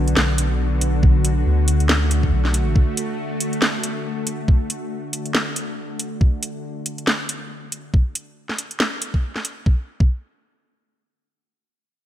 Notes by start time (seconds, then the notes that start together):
Already playing: B1 D3 B3 F#4
0.08 closed hi-hat
0.17 B1, snare
0.38 closed hi-hat
0.81 closed hi-hat
1.03 A3, kick
1.25 closed hi-hat
1.46 D2
1.68 closed hi-hat
1.80 closed hi-hat
1.89 snare
2.11 closed hi-hat
2.23 kick
2.33 B1
2.45 snare
2.54 closed hi-hat
2.76 kick
2.97 closed hi-hat
3.40 closed hi-hat
3.53 closed hi-hat
3.62 snare
3.84 closed hi-hat
4.27 closed hi-hat
4.48 kick
4.70 closed hi-hat
5.13 closed hi-hat
5.26 closed hi-hat
5.35 snare
5.56 closed hi-hat
5.99 closed hi-hat
6.21 kick
6.43 closed hi-hat
6.86 closed hi-hat
6.98 closed hi-hat
7.07 snare
7.29 closed hi-hat
7.72 closed hi-hat
7.94 kick
8.15 closed hi-hat
8.49 snare
8.58 closed hi-hat
8.71 closed hi-hat
8.80 snare
9.02 closed hi-hat
9.14 kick
9.36 snare
9.45 closed hi-hat
9.66 kick
10.00 kick